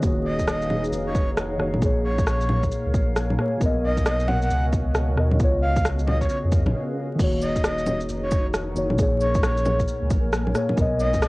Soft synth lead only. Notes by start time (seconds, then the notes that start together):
0.25 D#5
0.47 D#5
1.06 C#5
2.04 C#5
2.27 C#5
3.84 D#5
4.06 D#5
4.28 F#5
4.42 F#5
5.62 F5
6.06 D#5
6.21 C#5
6.29 C#5
7.42 D#5
7.64 D#5
8.23 C#5
9.21 C#5
9.43 C#5
10.99 D#5
11.22 D#5